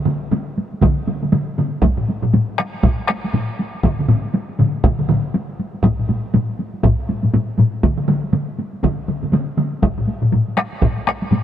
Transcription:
0.06 taiko mid medium
0.06 taiko high soft
0.23 taiko high soft
0.31 taiko mid medium
0.31 taiko high medium
0.48 taiko high soft
0.58 taiko high soft
0.73 taiko high soft
0.81 taiko medium
0.81 taiko mid medium
0.81 taiko high medium
0.98 taiko high soft
1.07 taiko mid medium
1.07 taiko high soft
1.23 taiko mid medium
1.23 taiko high soft
1.33 taiko mid medium
1.33 taiko high medium
1.48 taiko high soft
1.58 taiko mid medium
1.58 taiko high soft
1.82 taiko medium
1.82 taiko high medium
1.97 taiko low-mid medium
1.97 taiko high soft
2.09 taiko high soft
2.23 taiko low-mid medium
2.23 taiko high soft
2.33 taiko low-mid medium
2.33 taiko high medium
2.49 taiko high soft
2.58 taiko rim medium
2.58 taiko high soft
2.74 taiko high soft
2.83 taiko loud
2.83 taiko low-mid medium
2.83 taiko high medium
2.99 taiko high soft
3.08 taiko rim medium
3.08 taiko high soft
3.24 taiko high soft
3.34 taiko low-mid medium
3.34 taiko high medium
3.50 taiko high soft
3.59 taiko high soft
3.75 taiko high soft
3.83 taiko loud
3.83 taiko low-mid medium
3.83 taiko mid medium
3.83 taiko high medium
3.99 taiko low-mid medium
3.99 taiko mid medium
3.99 taiko high soft
4.08 taiko low-mid medium
4.08 taiko mid medium
4.08 taiko high soft
4.24 taiko high soft
4.34 taiko high medium
4.49 taiko high soft
4.59 taiko low-mid medium
4.59 taiko mid medium
4.59 taiko high soft
4.75 taiko high soft
4.84 taiko loud
4.84 taiko low-mid medium
4.84 taiko mid medium
4.84 taiko high medium
4.99 taiko low-mid medium
4.99 taiko mid medium
4.99 taiko high soft
5.09 taiko low-mid medium
5.09 taiko mid medium
5.09 taiko high soft
5.34 taiko high medium
5.49 taiko high soft
5.59 taiko high soft
5.74 taiko high soft
5.84 taiko loud
5.84 taiko low-mid medium
5.84 taiko high medium
5.99 taiko low-mid medium
5.99 taiko high soft
6.09 taiko low-mid medium
6.09 taiko high soft
6.25 taiko high soft
6.34 taiko low-mid medium
6.34 taiko high medium
6.49 taiko high soft
6.59 taiko high soft
6.74 taiko high soft
6.83 taiko medium
6.83 taiko low-mid medium
6.83 taiko high medium
6.99 taiko high soft
7.09 taiko low-mid medium
7.09 taiko high medium
7.23 taiko low-mid medium
7.23 taiko high soft
7.34 taiko low-mid medium
7.34 taiko high medium
7.49 taiko high soft
7.59 taiko low-mid medium
7.59 taiko high medium
7.74 taiko high soft
7.83 taiko medium
7.83 taiko mid medium
7.83 taiko high medium
7.98 taiko mid medium
7.98 taiko high soft
8.08 taiko mid medium
8.08 taiko high medium
8.23 taiko high soft
8.33 taiko mid medium
8.33 taiko high medium
8.48 taiko high soft
8.59 taiko high soft
8.73 taiko high soft
8.83 taiko medium
8.83 taiko mid medium
8.83 taiko high medium
8.98 taiko high soft
9.08 taiko mid medium
9.08 taiko high soft
9.23 taiko mid medium
9.23 taiko high soft
9.32 taiko mid medium
9.32 taiko high medium
9.48 taiko high soft
9.57 taiko mid medium
9.57 taiko high soft
9.73 taiko high soft
9.82 taiko medium
9.82 taiko high medium
9.98 taiko low-mid medium
9.98 taiko high soft
10.07 taiko high soft
10.22 taiko low-mid medium
10.22 taiko high soft
10.32 taiko low-mid medium
10.32 taiko high medium
10.48 taiko high soft
10.57 taiko rim medium
10.57 taiko high soft
10.73 taiko high soft
10.82 taiko medium
10.82 taiko low-mid medium
10.82 taiko high medium
10.97 taiko high soft
11.07 taiko rim medium
11.07 taiko high soft
11.22 taiko high soft
11.31 taiko low-mid medium
11.31 taiko high medium

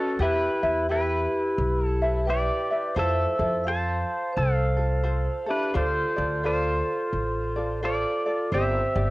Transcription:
0.00 0.19 C#4 medium
0.00 0.18 F#4 medium
0.00 0.20 F#4 soft
0.00 0.20 A4 medium
0.00 0.22 A4 medium
0.00 0.20 B4 soft
0.19 0.47 E2 loud
0.19 0.63 E4 medium
0.19 0.86 E4 medium
0.19 0.85 G4 medium
0.19 0.63 G4 medium
0.19 0.86 B4 loud
0.19 0.62 B4 medium
0.19 0.62 E5 medium
0.63 1.25 E2 medium
0.63 0.89 E4 soft
0.63 0.89 B4 medium
0.63 0.89 E5 medium
0.89 2.03 E4 medium
0.89 2.25 E4 medium
0.89 2.24 G4 medium
0.89 2.01 G4 medium
0.89 2.01 B4 medium
0.89 1.86 B4 medium
0.89 2.01 E5 medium
1.58 2.48 B1 medium
1.86 2.30 A4 medium
2.02 2.27 E4 soft
2.02 2.27 B4 medium
2.02 2.28 E5 medium
2.26 2.71 E4 medium
2.26 2.70 G4 medium
2.26 2.92 B4 medium
2.26 2.71 B4 medium
2.26 2.69 E5 medium
2.30 2.94 G4 medium
2.30 2.94 D5 medium
2.71 2.96 E4 soft
2.71 2.97 B4 soft
2.71 2.97 E5 soft
2.95 3.24 F2 medium
2.95 3.38 E4 medium
2.95 3.39 F4 medium
2.95 3.38 A4 medium
2.95 3.61 C5 medium
2.95 3.39 C5 medium
2.99 3.63 A4 medium
2.99 3.69 E5 medium
3.39 4.02 F2 medium
3.39 3.66 E4 soft
3.39 3.66 F4 soft
3.39 3.66 A4 medium
3.64 4.78 F4 medium
3.64 5.03 C5 medium
3.64 4.30 F5 medium
3.64 4.39 A5 medium
3.69 4.77 A4 medium
3.69 4.33 C5 medium
4.33 5.42 C5 medium
4.37 5.26 C2 medium
4.37 5.45 A4 medium
4.37 5.45 F5 medium
4.77 5.03 F4 soft
4.77 5.03 A4 medium
5.03 5.47 F4 medium
5.03 5.45 A4 medium
5.03 5.47 C5 medium
5.46 5.74 E4 soft
5.46 5.73 F4 soft
5.46 5.72 G4 medium
5.46 5.74 A4 medium
5.50 5.74 D4 medium
5.50 5.76 B4 medium
5.74 6.03 D2 loud
5.74 6.17 F4 medium
5.74 6.41 F4 medium
5.74 6.40 A4 medium
5.74 6.16 A4 medium
5.74 6.17 C5 medium
5.74 6.45 C5 medium
5.74 6.15 D5 medium
6.16 6.80 D2 loud
6.16 6.43 F4 soft
6.16 6.44 A4 medium
6.16 6.43 D5 medium
6.43 7.56 F4 medium
6.43 7.80 F4 medium
6.43 7.78 A4 medium
6.43 7.55 A4 medium
6.43 7.55 C5 medium
6.43 7.85 C5 medium
6.43 7.56 D5 medium
7.13 8.03 A1 medium
7.56 7.82 F4 medium
7.56 7.82 A4 medium
7.56 7.82 D5 medium
7.83 8.26 F4 medium
7.83 8.50 F4 medium
7.83 8.48 A4 medium
7.83 8.25 A4 medium
7.83 8.26 C5 medium
7.83 8.25 D5 medium
7.83 8.53 D5 medium
8.26 8.53 F4 soft
8.26 8.52 A4 soft
8.26 8.52 D5 soft
8.52 8.80 G1 loud
8.52 8.96 C4 medium
8.52 8.95 G4 medium
8.52 9.10 G4 medium
8.52 8.95 C5 medium
8.52 9.10 C5 medium
8.52 8.94 D5 medium
8.52 9.10 E5 loud
8.95 9.10 G1 loud
8.95 9.10 C4 medium
8.95 9.10 G4 medium
8.95 9.10 D5 medium

